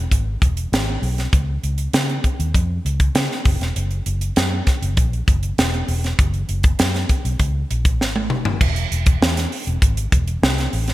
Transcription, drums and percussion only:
0.11 kick medium
0.11 closed hi-hat medium
0.42 kick loud
0.42 closed hi-hat medium
0.57 closed hi-hat medium
0.73 snare loud
0.73 closed hi-hat medium
1.03 open hi-hat medium
1.18 snare soft
1.18 closed hi-hat medium
1.33 kick loud
1.33 closed hi-hat medium
1.64 closed hi-hat medium
1.78 closed hi-hat medium
1.93 snare loud
1.93 closed hi-hat medium
2.09 closed hi-hat soft
2.24 kick medium
2.24 closed hi-hat medium
2.40 closed hi-hat medium
2.54 kick medium
2.54 closed hi-hat medium
2.86 closed hi-hat medium
3.00 kick medium
3.00 closed hi-hat medium
3.15 snare loud
3.15 closed hi-hat medium
3.31 snare soft
3.45 kick loud
3.45 open hi-hat medium
3.61 snare soft
3.61 closed hi-hat medium
3.76 closed hi-hat medium
3.91 closed hi-hat soft
4.06 closed hi-hat medium
4.21 closed hi-hat medium
4.36 snare loud
4.36 closed hi-hat medium
4.67 kick medium
4.67 snare soft
4.67 closed hi-hat medium
4.83 closed hi-hat medium
4.97 kick medium
4.97 closed hi-hat medium
5.13 closed hi-hat soft
5.28 kick loud
5.28 closed hi-hat medium
5.43 closed hi-hat medium
5.58 snare loud
5.58 closed hi-hat medium
5.74 closed hi-hat soft
5.88 open hi-hat medium
6.04 snare soft
6.04 closed hi-hat medium
6.19 kick loud
6.19 closed hi-hat medium
6.34 closed hi-hat soft
6.49 closed hi-hat medium
6.63 kick loud
6.63 closed hi-hat medium
6.79 snare loud
6.79 closed hi-hat loud
6.94 snare soft
6.94 closed hi-hat soft
7.09 kick medium
7.09 closed hi-hat medium
7.25 closed hi-hat medium
7.39 kick medium
7.39 closed hi-hat medium
7.71 closed hi-hat medium
7.85 kick medium
7.85 closed hi-hat medium
8.01 snare medium
8.16 high tom medium
8.30 mid tom medium
8.45 floor tom medium
8.61 kick loud
8.61 crash medium
8.76 closed hi-hat medium
8.92 closed hi-hat medium
9.06 kick loud
9.06 closed hi-hat medium
9.22 snare loud
9.37 snare soft
9.37 closed hi-hat medium
9.52 open hi-hat medium
9.67 closed hi-hat medium
9.82 kick medium
9.82 closed hi-hat medium
9.97 closed hi-hat medium
10.12 kick medium
10.12 closed hi-hat medium
10.28 closed hi-hat medium
10.43 snare loud
10.58 snare soft
10.58 closed hi-hat soft
10.73 open hi-hat medium
10.88 snare soft
10.88 closed hi-hat medium

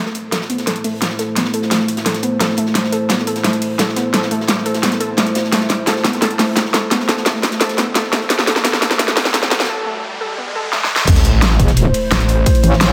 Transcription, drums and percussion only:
0.06 snare soft
0.15 closed hi-hat medium
0.32 snare loud
0.32 snare soft
0.32 closed hi-hat medium
0.41 snare medium
0.50 closed hi-hat medium
0.58 snare soft
0.58 closed hi-hat soft
0.67 snare soft
0.67 closed hi-hat medium
0.67 closed hi-hat loud
0.76 closed hi-hat soft
0.84 closed hi-hat medium
0.84 open hi-hat medium
1.02 snare soft
1.02 snare loud
1.02 closed hi-hat medium
1.10 snare soft
1.19 snare soft
1.19 closed hi-hat medium
1.36 snare medium
1.36 closed hi-hat medium
1.44 snare medium
1.53 closed hi-hat medium
1.62 snare soft
1.71 snare medium
1.71 snare loud
1.71 closed hi-hat loud
1.71 closed hi-hat medium
1.80 snare soft
1.88 closed hi-hat medium
1.97 snare medium
1.97 closed hi-hat soft
2.06 snare medium
2.06 closed hi-hat medium
2.14 snare soft
2.14 closed hi-hat soft
2.23 closed hi-hat medium
2.40 snare medium
2.40 snare loud
2.40 closed hi-hat loud
2.40 closed hi-hat medium
2.49 snare soft
2.57 closed hi-hat medium
2.66 snare soft
2.75 snare medium
2.75 closed hi-hat loud
2.75 closed hi-hat medium
2.84 snare soft
2.92 closed hi-hat medium
3.09 snare loud
3.09 snare medium
3.09 closed hi-hat medium
3.18 snare medium
3.27 closed hi-hat medium
3.36 snare soft
3.36 closed hi-hat soft
3.44 snare medium
3.44 closed hi-hat medium
3.53 closed hi-hat soft
3.62 closed hi-hat medium
3.62 open hi-hat medium
3.79 snare loud
3.79 snare medium
3.79 closed hi-hat medium
3.89 snare soft
3.96 snare soft
3.96 closed hi-hat medium
4.14 snare medium
4.14 closed hi-hat medium
4.22 snare medium
4.31 closed hi-hat medium
4.41 snare soft
4.48 snare medium
4.48 snare loud
4.48 closed hi-hat loud
4.48 closed hi-hat medium
4.57 snare soft
4.66 closed hi-hat medium
4.74 snare medium
4.74 closed hi-hat soft
4.83 snare medium
4.83 closed hi-hat medium
4.92 snare soft
4.92 closed hi-hat soft
5.00 closed hi-hat medium
5.17 snare loud
5.17 snare medium
5.17 closed hi-hat medium
5.26 snare soft
5.26 closed hi-hat soft
5.35 snare loud
5.35 closed hi-hat medium
5.44 snare soft
5.52 snare medium
5.52 closed hi-hat medium
5.61 snare soft
5.69 snare medium
5.69 closed hi-hat medium
5.86 snare medium
5.86 snare loud
5.86 closed hi-hat medium
5.96 snare medium
6.04 snare medium
6.04 closed hi-hat medium
6.13 snare soft
6.13 closed hi-hat soft
6.22 snare medium
6.22 closed hi-hat medium
6.31 closed hi-hat soft
6.39 snare medium
6.39 closed hi-hat medium
6.39 open hi-hat medium
6.56 snare loud
6.56 snare medium
6.56 closed hi-hat medium
6.65 snare soft
6.74 snare soft
6.74 snare medium
6.74 closed hi-hat medium
6.91 snare medium
6.91 closed hi-hat medium
7.00 snare soft
7.09 snare medium
7.09 closed hi-hat medium
7.17 snare soft
7.26 snare loud
7.26 snare medium
7.26 closed hi-hat medium
7.35 snare soft
7.43 snare medium
7.43 closed hi-hat medium
7.52 snare medium
7.52 closed hi-hat soft
7.61 snare medium
7.61 closed hi-hat medium
7.69 snare soft
7.69 closed hi-hat soft
7.78 snare medium
7.78 closed hi-hat medium
7.95 snare loud
7.95 snare medium
7.95 closed hi-hat medium
8.03 snare soft
8.12 snare medium
8.12 closed hi-hat medium
8.21 snare soft
8.30 snare medium
8.30 closed hi-hat medium
8.39 snare medium
8.47 snare medium
8.47 closed hi-hat medium
8.56 snare medium
8.64 snare loud
8.64 closed hi-hat medium
8.73 snare medium
8.82 snare loud
8.82 closed hi-hat medium
8.90 snare soft
8.90 snare medium
8.90 closed hi-hat soft
8.99 snare loud
8.99 closed hi-hat medium
9.08 snare medium
9.08 closed hi-hat soft
9.17 snare loud
9.17 closed hi-hat medium
9.17 open hi-hat medium
9.25 snare medium
9.34 snare loud
9.34 closed hi-hat medium
9.43 snare soft
9.43 snare medium
9.50 snare loud
9.50 closed hi-hat medium
9.59 snare medium
9.59 closed hi-hat medium
9.64 snare medium
9.64 closed hi-hat medium
10.73 snare medium
10.84 snare medium
10.96 snare loud
11.07 kick loud
11.07 closed hi-hat loud
11.07 closed hi-hat medium
11.07 crash loud
11.16 snare soft
11.16 closed hi-hat soft
11.25 closed hi-hat medium
11.42 snare loud
11.42 closed hi-hat medium
11.42 closed hi-hat loud
11.51 snare medium
11.59 kick loud
11.59 closed hi-hat medium
11.68 snare soft
11.68 closed hi-hat soft
11.77 closed hi-hat medium
11.94 closed hi-hat medium
11.94 open hi-hat medium
12.11 snare loud
12.11 closed hi-hat medium
12.20 snare soft
12.20 closed hi-hat soft
12.28 closed hi-hat medium
12.46 kick loud
12.46 closed hi-hat loud
12.46 open hi-hat medium
12.55 closed hi-hat soft
12.63 closed hi-hat medium
12.73 snare soft
12.81 snare loud
12.81 closed hi-hat loud
12.81 closed hi-hat medium

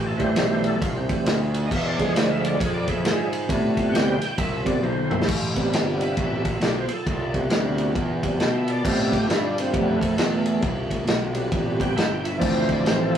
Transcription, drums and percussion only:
0.20 kick medium
0.20 ride medium
0.36 snare loud
0.36 ride medium
0.64 ride medium
0.82 kick loud
0.82 ride medium
1.09 kick medium
1.09 ride medium
1.26 snare loud
1.26 ride medium
1.54 ride medium
1.71 kick loud
1.71 crash medium
1.99 kick medium
1.99 ride medium
2.16 snare loud
2.16 ride loud
2.45 ride medium
2.60 kick loud
2.60 ride loud
2.88 kick medium
2.88 ride medium
3.05 snare loud
3.05 ride medium
3.33 ride medium
3.49 kick loud
3.49 ride loud
3.77 kick medium
3.77 ride medium
3.95 snare loud
3.95 ride medium
4.22 snare soft
4.22 ride medium
4.38 kick loud
4.38 ride loud
4.66 kick medium
4.66 ride medium
4.84 high tom medium
5.11 mid tom medium
5.22 snare medium
5.28 kick loud
5.28 crash loud
5.56 kick medium
5.56 ride medium
5.73 snare loud
5.73 ride loud
6.01 ride medium
6.17 kick loud
6.17 ride loud
6.45 kick medium
6.45 ride medium
6.61 snare loud
6.61 ride medium
6.89 ride medium
7.07 kick loud
7.07 ride loud
7.34 kick medium
7.34 ride medium
7.50 snare loud
7.50 ride loud
7.78 ride medium
7.95 kick loud
7.95 ride medium
8.23 kick medium
8.23 ride medium
8.40 snare medium
8.40 ride medium
8.68 ride medium
8.85 kick loud
8.85 crash loud
9.12 kick medium
9.12 ride medium
9.30 snare loud
9.30 ride loud
9.58 snare soft
9.58 ride medium
9.74 kick loud
9.74 ride loud
10.01 kick medium
10.01 ride medium
10.18 snare loud
10.18 ride loud
10.46 ride medium
10.62 kick loud
10.62 ride loud
10.91 kick medium
10.91 ride medium
11.07 snare loud
11.07 ride medium
11.35 ride medium
11.52 kick loud
11.52 ride medium
11.80 kick medium
11.80 ride medium
11.97 snare loud
11.97 ride medium
12.25 ride medium
12.41 kick loud
12.41 crash medium
12.69 kick medium
12.69 ride medium
12.86 snare loud
12.86 ride medium

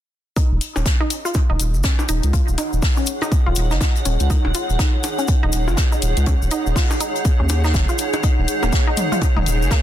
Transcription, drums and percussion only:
0.37 kick loud
0.37 closed hi-hat medium
0.37 cabasa soft
0.61 closed hi-hat medium
0.61 cabasa medium
0.76 closed hi-hat soft
0.76 percussion blips soft
0.76 cabasa soft
0.85 kick loud
0.85 snare loud
0.85 closed hi-hat medium
0.85 cabasa medium
1.10 closed hi-hat medium
1.10 cabasa medium
1.25 closed hi-hat soft
1.25 cabasa soft
1.34 kick loud
1.34 closed hi-hat medium
1.34 percussion blips soft
1.34 cabasa soft
1.59 closed hi-hat medium
1.59 cabasa medium
1.74 cabasa soft
1.83 kick loud
1.83 snare loud
1.83 closed hi-hat medium
1.83 cabasa soft
1.99 percussion blips soft
1.99 cabasa soft
2.08 closed hi-hat medium
2.08 cabasa medium
2.23 closed hi-hat soft
2.23 cabasa soft
2.33 kick loud
2.33 closed hi-hat medium
2.33 cabasa medium
2.48 cabasa soft
2.58 closed hi-hat medium
2.58 closed hi-hat loud
2.58 percussion blips soft
2.58 cabasa medium
2.73 cabasa soft
2.82 kick loud
2.82 snare loud
2.82 open hi-hat medium
2.82 cabasa soft
2.97 cabasa soft
3.06 closed hi-hat medium
3.06 closed hi-hat loud
3.06 cabasa loud
3.21 closed hi-hat soft
3.21 percussion blips soft
3.21 cabasa soft
3.32 kick loud
3.32 closed hi-hat medium
3.32 cabasa medium
3.55 closed hi-hat medium
3.55 cabasa medium
3.70 snare soft
3.70 cabasa soft
3.80 kick loud
3.80 snare loud
3.80 closed hi-hat medium
3.80 percussion blips soft
3.80 cabasa soft
3.95 closed hi-hat soft
3.95 cabasa soft
4.05 closed hi-hat medium
4.05 cabasa medium
4.20 closed hi-hat soft
4.20 cabasa soft
4.30 kick loud
4.30 closed hi-hat medium
4.30 cabasa medium
4.45 percussion blips soft
4.54 closed hi-hat loud
4.54 closed hi-hat medium
4.54 cabasa medium
4.70 closed hi-hat soft
4.70 cabasa soft
4.79 kick loud
4.79 snare loud
4.79 closed hi-hat medium
4.79 cabasa medium
5.03 closed hi-hat medium
5.03 percussion blips soft
5.03 cabasa medium
5.18 closed hi-hat soft
5.18 cabasa soft
5.28 kick loud
5.28 closed hi-hat medium
5.28 cabasa medium
5.52 closed hi-hat medium
5.52 cabasa loud
5.68 percussion blips soft
5.68 cabasa soft
5.77 kick loud
5.77 snare loud
5.77 closed hi-hat medium
5.77 cabasa soft
5.92 cabasa soft
6.02 closed hi-hat medium
6.02 cabasa medium
6.17 closed hi-hat soft
6.17 cabasa soft
6.26 kick loud
6.26 closed hi-hat medium
6.26 percussion blips soft
6.26 cabasa medium
6.42 cabasa soft
6.50 closed hi-hat medium
6.50 cabasa medium
6.66 cabasa soft
6.76 kick loud
6.76 snare loud
6.76 open hi-hat medium
6.76 cabasa medium
6.91 percussion blips soft
6.91 cabasa soft
7.00 closed hi-hat medium
7.00 cabasa medium
7.15 closed hi-hat soft
7.15 cabasa soft
7.25 kick loud
7.25 closed hi-hat medium
7.25 cabasa soft
7.49 closed hi-hat medium
7.49 percussion blips soft
7.49 cabasa medium
7.64 snare medium
7.64 cabasa soft
7.74 kick loud
7.74 snare loud
7.74 closed hi-hat medium
7.74 cabasa medium
7.88 closed hi-hat soft
7.88 cabasa soft
7.98 closed hi-hat medium
7.98 cabasa medium
8.13 closed hi-hat soft
8.13 percussion blips soft
8.13 cabasa soft
8.23 kick loud
8.23 closed hi-hat medium
8.23 cabasa soft
8.48 closed hi-hat medium
8.48 cabasa medium
8.63 closed hi-hat soft
8.63 percussion blips soft
8.63 cabasa soft
8.72 kick loud
8.72 snare loud
8.72 closed hi-hat medium
8.72 cabasa soft
8.97 closed hi-hat medium
8.97 mid tom medium
8.97 cabasa medium
9.12 closed hi-hat soft
9.12 mid tom medium
9.12 cabasa soft
9.21 kick loud
9.21 closed hi-hat medium
9.21 percussion blips soft
9.21 cabasa medium
9.36 mid tom medium
9.46 closed hi-hat medium
9.46 cabasa medium
9.62 cabasa soft
9.71 kick loud
9.71 snare loud
9.71 closed hi-hat medium
9.71 cabasa soft

